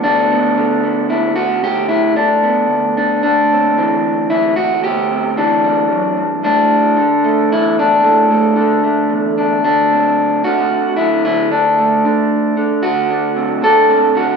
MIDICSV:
0, 0, Header, 1, 2, 480
1, 0, Start_track
1, 0, Tempo, 533333
1, 27, Time_signature, 3, 2, 24, 8
1, 12929, End_track
2, 0, Start_track
2, 0, Title_t, "Clean electric guitar"
2, 0, Program_c, 0, 27
2, 0, Note_on_c, 0, 55, 49
2, 0, Note_on_c, 0, 59, 50
2, 33, Note_on_c, 0, 62, 91
2, 38, Note_on_c, 0, 38, 79
2, 275, Note_off_c, 0, 55, 0
2, 279, Note_off_c, 0, 59, 0
2, 279, Note_on_c, 0, 59, 49
2, 516, Note_on_c, 0, 50, 66
2, 747, Note_off_c, 0, 59, 0
2, 751, Note_on_c, 0, 59, 45
2, 980, Note_off_c, 0, 38, 0
2, 984, Note_on_c, 0, 38, 67
2, 985, Note_off_c, 0, 62, 0
2, 989, Note_on_c, 0, 64, 77
2, 1216, Note_off_c, 0, 64, 0
2, 1220, Note_on_c, 0, 66, 102
2, 1440, Note_off_c, 0, 59, 0
2, 1457, Note_off_c, 0, 38, 0
2, 1460, Note_on_c, 0, 38, 73
2, 1463, Note_off_c, 0, 66, 0
2, 1472, Note_on_c, 0, 67, 112
2, 1693, Note_off_c, 0, 67, 0
2, 1697, Note_on_c, 0, 64, 92
2, 1939, Note_off_c, 0, 50, 0
2, 1941, Note_off_c, 0, 64, 0
2, 1942, Note_on_c, 0, 50, 57
2, 1947, Note_on_c, 0, 62, 71
2, 2189, Note_on_c, 0, 59, 44
2, 2416, Note_off_c, 0, 38, 0
2, 2420, Note_on_c, 0, 38, 55
2, 2665, Note_off_c, 0, 62, 0
2, 2676, Note_on_c, 0, 62, 50
2, 2886, Note_off_c, 0, 59, 0
2, 2903, Note_off_c, 0, 62, 0
2, 2907, Note_on_c, 0, 62, 86
2, 2914, Note_off_c, 0, 38, 0
2, 2918, Note_on_c, 0, 38, 69
2, 3171, Note_on_c, 0, 60, 47
2, 3395, Note_off_c, 0, 50, 0
2, 3399, Note_on_c, 0, 52, 63
2, 3405, Note_off_c, 0, 60, 0
2, 3409, Note_on_c, 0, 60, 49
2, 3866, Note_off_c, 0, 62, 0
2, 3870, Note_off_c, 0, 38, 0
2, 3870, Note_on_c, 0, 64, 84
2, 3881, Note_on_c, 0, 38, 58
2, 4103, Note_off_c, 0, 64, 0
2, 4107, Note_on_c, 0, 66, 101
2, 4336, Note_off_c, 0, 60, 0
2, 4349, Note_off_c, 0, 66, 0
2, 4353, Note_on_c, 0, 67, 110
2, 4356, Note_off_c, 0, 38, 0
2, 4366, Note_on_c, 0, 38, 76
2, 4393, Note_off_c, 0, 52, 0
2, 4604, Note_on_c, 0, 60, 44
2, 4835, Note_off_c, 0, 67, 0
2, 4837, Note_on_c, 0, 52, 58
2, 4838, Note_on_c, 0, 62, 73
2, 5076, Note_on_c, 0, 55, 50
2, 5313, Note_off_c, 0, 38, 0
2, 5316, Note_on_c, 0, 42, 66
2, 5551, Note_off_c, 0, 42, 0
2, 5555, Note_on_c, 0, 43, 66
2, 5768, Note_off_c, 0, 60, 0
2, 5785, Note_off_c, 0, 62, 0
2, 5791, Note_on_c, 0, 45, 81
2, 5793, Note_off_c, 0, 43, 0
2, 5793, Note_off_c, 0, 55, 0
2, 5799, Note_on_c, 0, 62, 97
2, 5822, Note_off_c, 0, 52, 0
2, 6269, Note_off_c, 0, 45, 0
2, 6269, Note_on_c, 0, 50, 65
2, 6518, Note_on_c, 0, 57, 54
2, 6747, Note_on_c, 0, 40, 58
2, 6748, Note_off_c, 0, 62, 0
2, 6771, Note_on_c, 0, 64, 103
2, 6999, Note_off_c, 0, 64, 0
2, 7013, Note_on_c, 0, 62, 89
2, 7197, Note_off_c, 0, 40, 0
2, 7226, Note_on_c, 0, 45, 69
2, 7229, Note_off_c, 0, 57, 0
2, 7233, Note_on_c, 0, 57, 52
2, 7465, Note_off_c, 0, 57, 0
2, 7476, Note_on_c, 0, 57, 48
2, 7693, Note_off_c, 0, 50, 0
2, 7700, Note_off_c, 0, 57, 0
2, 7704, Note_on_c, 0, 50, 63
2, 7708, Note_off_c, 0, 45, 0
2, 7710, Note_on_c, 0, 57, 50
2, 7943, Note_off_c, 0, 57, 0
2, 7954, Note_on_c, 0, 57, 50
2, 8187, Note_on_c, 0, 40, 62
2, 8430, Note_off_c, 0, 62, 0
2, 8441, Note_on_c, 0, 62, 48
2, 8647, Note_off_c, 0, 40, 0
2, 8652, Note_off_c, 0, 57, 0
2, 8670, Note_off_c, 0, 62, 0
2, 8674, Note_on_c, 0, 38, 70
2, 8680, Note_on_c, 0, 62, 86
2, 8926, Note_on_c, 0, 60, 45
2, 9395, Note_off_c, 0, 62, 0
2, 9397, Note_off_c, 0, 50, 0
2, 9399, Note_on_c, 0, 66, 99
2, 9408, Note_on_c, 0, 50, 56
2, 9865, Note_off_c, 0, 66, 0
2, 9869, Note_on_c, 0, 64, 85
2, 9876, Note_off_c, 0, 50, 0
2, 9880, Note_on_c, 0, 50, 62
2, 10114, Note_off_c, 0, 64, 0
2, 10116, Note_off_c, 0, 38, 0
2, 10120, Note_on_c, 0, 38, 71
2, 10124, Note_on_c, 0, 64, 89
2, 10147, Note_off_c, 0, 60, 0
2, 10361, Note_off_c, 0, 64, 0
2, 10364, Note_on_c, 0, 62, 78
2, 10606, Note_on_c, 0, 57, 48
2, 10843, Note_off_c, 0, 50, 0
2, 10846, Note_on_c, 0, 50, 62
2, 11309, Note_off_c, 0, 50, 0
2, 11313, Note_on_c, 0, 50, 62
2, 11540, Note_off_c, 0, 62, 0
2, 11544, Note_off_c, 0, 38, 0
2, 11544, Note_on_c, 0, 66, 98
2, 11548, Note_on_c, 0, 38, 68
2, 11790, Note_on_c, 0, 62, 44
2, 12023, Note_off_c, 0, 57, 0
2, 12026, Note_on_c, 0, 60, 45
2, 12252, Note_off_c, 0, 50, 0
2, 12255, Note_on_c, 0, 50, 62
2, 12265, Note_off_c, 0, 66, 0
2, 12273, Note_on_c, 0, 69, 105
2, 12495, Note_off_c, 0, 60, 0
2, 12505, Note_on_c, 0, 60, 48
2, 12727, Note_off_c, 0, 50, 0
2, 12737, Note_on_c, 0, 50, 64
2, 12747, Note_off_c, 0, 69, 0
2, 12751, Note_on_c, 0, 66, 82
2, 12929, Note_off_c, 0, 38, 0
2, 12929, Note_off_c, 0, 50, 0
2, 12929, Note_off_c, 0, 60, 0
2, 12929, Note_off_c, 0, 62, 0
2, 12929, Note_off_c, 0, 66, 0
2, 12929, End_track
0, 0, End_of_file